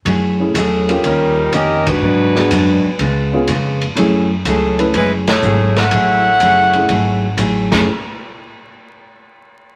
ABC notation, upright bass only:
X:1
M:4/4
L:1/8
Q:"Swing" 1/4=123
K:F#m
V:1 name="Upright bass" clef=bass
F,,2 E,,2 ^D,,2 ^E,,2 | G,,2 F,, z C,,2 ^E,,2 | F,,2 C,,2 F,,,2 G,,,2 | A,,,2 F,,,2 G,,,2 A,,, F,,, |
z8 |]